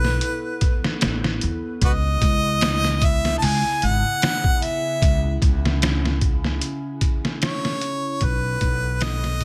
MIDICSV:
0, 0, Header, 1, 5, 480
1, 0, Start_track
1, 0, Key_signature, 4, "minor"
1, 0, Tempo, 800000
1, 1089, Time_signature, 4, 2, 24, 8
1, 5665, End_track
2, 0, Start_track
2, 0, Title_t, "Harmonica"
2, 0, Program_c, 0, 22
2, 0, Note_on_c, 0, 71, 95
2, 618, Note_off_c, 0, 71, 0
2, 1107, Note_on_c, 0, 66, 74
2, 1107, Note_on_c, 0, 71, 74
2, 1107, Note_on_c, 0, 75, 106
2, 1151, Note_off_c, 0, 66, 0
2, 1153, Note_off_c, 0, 71, 0
2, 1831, Note_on_c, 0, 76, 93
2, 1840, Note_off_c, 0, 75, 0
2, 2022, Note_off_c, 0, 76, 0
2, 2030, Note_on_c, 0, 81, 84
2, 2069, Note_on_c, 0, 80, 107
2, 2078, Note_off_c, 0, 81, 0
2, 2314, Note_on_c, 0, 78, 108
2, 2323, Note_off_c, 0, 80, 0
2, 2782, Note_on_c, 0, 76, 91
2, 2791, Note_off_c, 0, 78, 0
2, 3256, Note_off_c, 0, 76, 0
2, 4469, Note_on_c, 0, 73, 97
2, 4946, Note_on_c, 0, 71, 103
2, 4955, Note_off_c, 0, 73, 0
2, 5421, Note_on_c, 0, 75, 114
2, 5430, Note_off_c, 0, 71, 0
2, 5665, Note_off_c, 0, 75, 0
2, 5665, End_track
3, 0, Start_track
3, 0, Title_t, "Ambient pad"
3, 0, Program_c, 1, 92
3, 0, Note_on_c, 1, 59, 66
3, 0, Note_on_c, 1, 64, 82
3, 0, Note_on_c, 1, 69, 67
3, 1067, Note_off_c, 1, 64, 0
3, 1067, Note_off_c, 1, 69, 0
3, 1092, Note_on_c, 1, 49, 73
3, 1093, Note_on_c, 1, 64, 79
3, 2989, Note_off_c, 1, 59, 0
3, 3007, Note_on_c, 1, 61, 70
3, 4907, Note_off_c, 1, 49, 0
3, 4907, Note_off_c, 1, 64, 0
3, 4909, Note_off_c, 1, 61, 0
3, 4923, Note_on_c, 1, 59, 74
3, 4923, Note_on_c, 1, 64, 82
3, 4923, Note_on_c, 1, 69, 67
3, 5665, Note_off_c, 1, 59, 0
3, 5665, Note_off_c, 1, 64, 0
3, 5665, Note_off_c, 1, 69, 0
3, 5665, End_track
4, 0, Start_track
4, 0, Title_t, "Upright bass"
4, 0, Program_c, 2, 32
4, 0, Note_on_c, 2, 35, 101
4, 110, Note_off_c, 2, 35, 0
4, 618, Note_on_c, 2, 33, 77
4, 828, Note_off_c, 2, 33, 0
4, 860, Note_on_c, 2, 40, 90
4, 971, Note_off_c, 2, 40, 0
4, 1092, Note_on_c, 2, 37, 99
4, 1305, Note_off_c, 2, 37, 0
4, 1332, Note_on_c, 2, 37, 96
4, 2030, Note_off_c, 2, 37, 0
4, 2053, Note_on_c, 2, 37, 99
4, 2168, Note_off_c, 2, 37, 0
4, 2297, Note_on_c, 2, 32, 89
4, 2410, Note_off_c, 2, 32, 0
4, 3016, Note_on_c, 2, 37, 97
4, 3227, Note_off_c, 2, 37, 0
4, 3256, Note_on_c, 2, 37, 95
4, 3952, Note_off_c, 2, 37, 0
4, 4932, Note_on_c, 2, 35, 101
4, 5145, Note_off_c, 2, 35, 0
4, 5170, Note_on_c, 2, 35, 102
4, 5665, Note_off_c, 2, 35, 0
4, 5665, End_track
5, 0, Start_track
5, 0, Title_t, "Drums"
5, 27, Note_on_c, 9, 38, 36
5, 87, Note_off_c, 9, 38, 0
5, 127, Note_on_c, 9, 42, 93
5, 187, Note_off_c, 9, 42, 0
5, 367, Note_on_c, 9, 42, 67
5, 369, Note_on_c, 9, 36, 99
5, 427, Note_off_c, 9, 42, 0
5, 429, Note_off_c, 9, 36, 0
5, 507, Note_on_c, 9, 38, 60
5, 567, Note_off_c, 9, 38, 0
5, 607, Note_on_c, 9, 42, 86
5, 612, Note_on_c, 9, 38, 108
5, 667, Note_off_c, 9, 42, 0
5, 672, Note_off_c, 9, 38, 0
5, 746, Note_on_c, 9, 38, 59
5, 806, Note_off_c, 9, 38, 0
5, 849, Note_on_c, 9, 42, 66
5, 909, Note_off_c, 9, 42, 0
5, 1089, Note_on_c, 9, 36, 111
5, 1089, Note_on_c, 9, 42, 85
5, 1149, Note_off_c, 9, 36, 0
5, 1149, Note_off_c, 9, 42, 0
5, 1329, Note_on_c, 9, 36, 91
5, 1329, Note_on_c, 9, 42, 69
5, 1389, Note_off_c, 9, 36, 0
5, 1389, Note_off_c, 9, 42, 0
5, 1568, Note_on_c, 9, 42, 85
5, 1574, Note_on_c, 9, 38, 121
5, 1628, Note_off_c, 9, 42, 0
5, 1634, Note_off_c, 9, 38, 0
5, 1707, Note_on_c, 9, 38, 42
5, 1767, Note_off_c, 9, 38, 0
5, 1810, Note_on_c, 9, 36, 96
5, 1810, Note_on_c, 9, 42, 71
5, 1870, Note_off_c, 9, 36, 0
5, 1870, Note_off_c, 9, 42, 0
5, 1949, Note_on_c, 9, 38, 45
5, 2009, Note_off_c, 9, 38, 0
5, 2054, Note_on_c, 9, 46, 86
5, 2114, Note_off_c, 9, 46, 0
5, 2293, Note_on_c, 9, 42, 69
5, 2353, Note_off_c, 9, 42, 0
5, 2534, Note_on_c, 9, 42, 85
5, 2539, Note_on_c, 9, 38, 117
5, 2594, Note_off_c, 9, 42, 0
5, 2599, Note_off_c, 9, 38, 0
5, 2665, Note_on_c, 9, 36, 99
5, 2725, Note_off_c, 9, 36, 0
5, 2774, Note_on_c, 9, 42, 64
5, 2834, Note_off_c, 9, 42, 0
5, 3011, Note_on_c, 9, 36, 114
5, 3015, Note_on_c, 9, 42, 79
5, 3071, Note_off_c, 9, 36, 0
5, 3075, Note_off_c, 9, 42, 0
5, 3251, Note_on_c, 9, 36, 91
5, 3253, Note_on_c, 9, 42, 66
5, 3311, Note_off_c, 9, 36, 0
5, 3313, Note_off_c, 9, 42, 0
5, 3393, Note_on_c, 9, 38, 53
5, 3453, Note_off_c, 9, 38, 0
5, 3493, Note_on_c, 9, 42, 86
5, 3498, Note_on_c, 9, 38, 122
5, 3553, Note_off_c, 9, 42, 0
5, 3558, Note_off_c, 9, 38, 0
5, 3633, Note_on_c, 9, 38, 47
5, 3693, Note_off_c, 9, 38, 0
5, 3729, Note_on_c, 9, 36, 92
5, 3729, Note_on_c, 9, 42, 65
5, 3789, Note_off_c, 9, 36, 0
5, 3789, Note_off_c, 9, 42, 0
5, 3867, Note_on_c, 9, 38, 40
5, 3927, Note_off_c, 9, 38, 0
5, 3969, Note_on_c, 9, 42, 91
5, 4029, Note_off_c, 9, 42, 0
5, 4207, Note_on_c, 9, 42, 72
5, 4208, Note_on_c, 9, 36, 99
5, 4267, Note_off_c, 9, 42, 0
5, 4268, Note_off_c, 9, 36, 0
5, 4349, Note_on_c, 9, 38, 57
5, 4409, Note_off_c, 9, 38, 0
5, 4450, Note_on_c, 9, 42, 82
5, 4456, Note_on_c, 9, 38, 110
5, 4510, Note_off_c, 9, 42, 0
5, 4516, Note_off_c, 9, 38, 0
5, 4589, Note_on_c, 9, 38, 60
5, 4649, Note_off_c, 9, 38, 0
5, 4689, Note_on_c, 9, 42, 64
5, 4749, Note_off_c, 9, 42, 0
5, 4924, Note_on_c, 9, 42, 85
5, 4928, Note_on_c, 9, 36, 105
5, 4984, Note_off_c, 9, 42, 0
5, 4988, Note_off_c, 9, 36, 0
5, 5166, Note_on_c, 9, 42, 71
5, 5167, Note_on_c, 9, 36, 92
5, 5226, Note_off_c, 9, 42, 0
5, 5227, Note_off_c, 9, 36, 0
5, 5404, Note_on_c, 9, 42, 88
5, 5409, Note_on_c, 9, 38, 119
5, 5464, Note_off_c, 9, 42, 0
5, 5469, Note_off_c, 9, 38, 0
5, 5543, Note_on_c, 9, 38, 47
5, 5603, Note_off_c, 9, 38, 0
5, 5643, Note_on_c, 9, 42, 70
5, 5646, Note_on_c, 9, 36, 101
5, 5665, Note_off_c, 9, 36, 0
5, 5665, Note_off_c, 9, 42, 0
5, 5665, End_track
0, 0, End_of_file